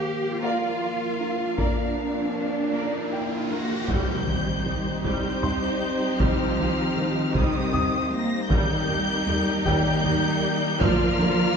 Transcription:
0.00 3.89 F3 medium
0.00 3.53 A#3 medium
0.00 3.89 A#3 medium
0.00 3.89 F4 medium
0.00 0.40 G4 medium
0.00 3.89 A#4 medium
0.00 0.78 C5 soft
0.00 3.69 F5 medium
0.00 riser medium
0.43 0.66 A#3 medium
0.43 1.59 F4 medium
0.43 0.79 A#4 medium
0.43 0.79 D5 soft
0.43 2.70 F5 medium
0.81 1.05 F4 soft
0.81 0.89 A#4 soft
0.81 0.90 D5 soft
1.20 1.43 D4 medium
1.20 1.28 A#4 soft
1.20 1.29 A#4 soft
1.58 1.81 A#3 medium
1.58 3.51 D4 medium
1.58 1.94 A#4 soft
1.58 1.94 D5 soft
1.58 3.86 A#5 soft
1.58 taiko medium
2.73 2.97 A#3 medium
2.73 3.09 A#4 soft
2.73 3.10 D5 soft
3.12 3.35 F4 medium
3.12 3.20 A#4 soft
3.12 3.20 D5 soft
3.12 3.85 G5 soft
3.50 3.87 A#3 medium
3.50 3.74 D4 medium
3.50 3.58 A#4 soft
3.50 3.59 A#4 soft
3.50 3.86 A#6 medium
3.89 3.97 C2 medium
3.89 4.12 C3 medium
3.89 8.46 G3 medium
3.89 4.25 G3 medium
3.89 5.02 G3 medium
3.89 8.47 C4 medium
3.89 8.46 D#4 medium
3.89 8.47 D#4 medium
3.89 8.47 G4 medium
3.89 8.47 C5 medium
3.89 5.03 G6 medium
3.89 taiko medium
3.89 impact medium
4.27 4.35 C2 soft
4.27 4.35 C3 soft
4.27 4.50 D#3 medium
4.66 4.74 C2 soft
4.66 4.89 D#3 medium
4.66 4.74 D#3 soft
5.04 5.12 C2 medium
5.04 5.27 C3 medium
5.04 5.40 G3 medium
5.04 6.17 G3 medium
5.04 6.17 G6 medium
5.04 taiko medium
5.42 5.51 C2 soft
5.42 5.51 C3 medium
5.42 5.66 C4 medium
5.42 7.70 C6 medium
5.42 taiko low medium
6.19 6.28 C2 medium
6.19 6.43 C3 medium
6.19 7.35 F3 medium
6.19 6.55 G3 medium
6.19 7.35 F6 medium
6.19 taiko loud
6.58 6.66 C2 medium
6.58 6.66 C3 soft
6.58 6.81 D#3 medium
6.96 7.04 C2 medium
6.96 7.20 D#3 medium
6.96 7.04 D#3 medium
7.35 7.43 C2 medium
7.35 7.58 C3 loud
7.35 8.11 D#3 medium
7.35 7.71 G3 medium
7.35 8.12 D#6 medium
7.35 taiko medium
7.73 7.82 C2 medium
7.73 7.82 C3 medium
7.73 7.96 C4 medium
7.73 10.00 D#6 medium
7.73 taiko low medium
8.11 8.51 A#3 medium
8.11 8.50 A#6 loud
8.50 8.58 D#2 medium
8.50 8.73 D#3 medium
8.50 10.81 D#3 medium
8.50 8.86 G3 medium
8.50 9.64 G3 medium
8.50 11.57 A#3 medium
8.50 10.77 D#4 medium
8.50 10.77 G4 medium
8.50 10.77 A#4 medium
8.50 11.57 A#4 medium
8.50 9.63 G6 loud
8.50 taiko loud
8.89 8.97 D#2 medium
8.89 8.97 D#3 medium
8.89 9.12 G3 medium
9.27 9.36 D#2 medium
9.27 9.36 D#3 medium
9.27 9.50 G3 medium
9.65 9.74 D#2 medium
9.65 9.89 D#3 loud
9.65 10.02 G3 medium
9.65 10.79 G3 medium
9.65 11.57 G4 soft
9.65 11.57 G5 medium
9.65 10.79 G6 loud
9.65 taiko medium
10.04 10.13 D#2 medium
10.04 10.13 D#3 medium
10.04 10.27 D#4 medium
10.04 taiko low medium
10.81 10.90 D2 medium
10.81 11.57 D3 medium
10.81 11.17 F3 loud
10.81 11.57 F3 loud
10.81 11.04 A#3 medium
10.81 11.57 D4 medium
10.81 11.57 F4 medium
10.81 11.57 A#4 medium
10.81 11.57 D5 medium
10.81 11.57 F6 loud
10.81 taiko loud
11.20 11.28 D2 medium
11.20 11.28 D3 medium
11.20 11.43 D4 medium

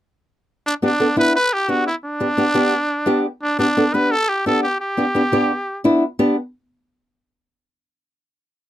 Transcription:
0.67 0.74 D4 medium
0.82 0.88 B3 medium
0.82 0.89 D4 medium
0.82 1.16 D4 medium
0.82 0.89 G4 medium
1.00 1.06 B3 medium
1.00 1.06 D4 medium
1.00 1.06 A4 medium
1.16 1.35 B3 medium
1.16 1.35 D4 medium
1.16 1.35 E4 medium
1.16 1.34 B4 loud
1.36 1.54 B4 loud
1.53 1.71 G4 medium
1.68 1.87 B3 medium
1.68 1.87 D4 medium
1.68 1.87 F#4 medium
1.68 1.87 G4 medium
1.87 1.95 E4 medium
2.05 3.21 D4 loud
2.20 2.27 B3 medium
2.20 2.27 D4 medium
2.20 2.27 G4 medium
2.37 2.44 B3 medium
2.37 2.44 D4 medium
2.37 2.44 G4 medium
2.54 2.73 B3 medium
2.54 2.73 D4 medium
2.54 2.73 G4 medium
3.06 3.25 B3 medium
3.06 3.25 D4 medium
3.06 3.25 G4 medium
3.43 3.59 D4 medium
3.59 3.65 B3 medium
3.59 3.95 D4 medium
3.59 3.65 D4 medium
3.59 3.66 G4 medium
3.77 3.83 B3 medium
3.77 3.83 D4 medium
3.77 3.83 A4 medium
3.94 4.12 B3 medium
3.94 4.12 D4 medium
3.94 4.13 G4 medium
3.94 4.13 B4 medium
4.11 4.30 A4 loud
4.29 4.46 G4 medium
4.46 4.64 B3 medium
4.46 4.64 D4 medium
4.46 4.65 G4 medium
4.46 4.63 A4 medium
4.63 4.79 G4 medium
4.81 5.81 G4 medium
4.97 5.04 B3 medium
4.97 5.04 D4 medium
4.97 5.04 G4 medium
5.15 5.21 B3 medium
5.15 5.21 D4 medium
5.15 5.22 G4 medium
5.32 5.51 B3 medium
5.32 5.51 D4 medium
5.32 5.51 G4 medium
5.84 6.03 B3 medium
5.84 6.03 D4 medium
5.84 6.03 E4 medium
6.19 6.35 B3 medium
6.19 6.35 D4 medium
6.19 6.35 G4 medium

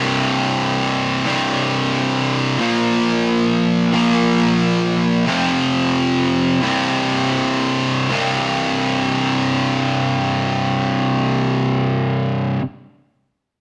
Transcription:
0.00 1.24 C2 loud
0.00 1.25 G2 medium
0.00 1.26 C3 loud
1.25 2.58 C2 loud
1.25 2.59 G2 loud
1.25 2.60 C3 loud
2.58 3.91 A#2 loud
2.58 3.93 F3 loud
2.58 3.94 A#3 loud
3.92 5.26 A#2 loud
3.92 5.26 F3 loud
3.92 5.27 A#3 loud
5.26 6.61 F2 loud
5.26 6.62 C3 loud
5.26 6.63 F3 loud
6.62 8.08 C2 loud
6.62 8.09 G2 loud
6.62 8.10 C3 loud
8.09 12.59 C2 loud
8.09 12.61 G2 loud
8.13 12.63 C3 loud

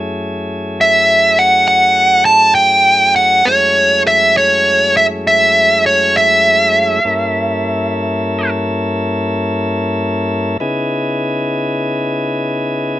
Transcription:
0.00 3.44 F#2 medium
0.00 3.43 A3 medium
0.00 3.43 C#4 medium
0.00 3.43 E4 medium
0.00 3.43 G#4 medium
0.81 1.41 E5 medium
1.39 1.67 F#5 medium
1.68 2.23 F#5 medium
2.25 2.54 A5 medium
2.55 3.15 G5 medium
3.16 3.47 F#5 medium
3.45 7.00 F#2 medium
3.45 7.00 G#3 medium
3.45 7.00 A3 medium
3.45 7.00 C#4 medium
3.45 7.00 E4 medium
3.45 4.02 C#5 medium
4.07 4.37 E5 medium
4.37 4.96 C#5 medium
4.97 5.05 E5 medium
5.27 5.86 E5 medium
5.86 6.16 C#5 medium
6.17 8.50 E5 medium
7.05 10.58 G2 medium
7.05 10.58 A#3 medium
7.05 10.57 C#4 medium
7.05 10.57 E4 medium
7.05 10.58 A4 medium
10.60 13.00 C#3 medium
10.60 13.00 B3 medium
10.60 13.00 D#4 medium
10.60 13.00 E4 medium
10.60 13.00 G#4 medium

